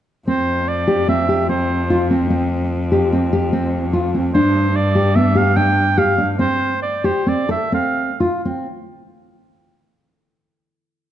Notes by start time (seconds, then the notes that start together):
0.27 F2 C4 C5
0.68 D5
0.87 G4
1.08 C4 E5
1.29 G4
1.49 C4 C5
1.90 F4
2.10 C4
2.30 C4
2.92 G4
3.13 C4
3.33 G4
3.53 C4
3.93 F4
4.14 C4
4.34 G2 D4 C5
4.76 D5
4.95 G4
5.16 B3 E5
5.35 G4 F5
5.57 D4 G5
5.98 G4 F5
6.18 D4
6.39 C4 C5
6.82 D5
7.04 G4 C5
7.26 C4 D5
7.49 A4 E5
7.72 C4 F5
8.20 F4
8.45 C4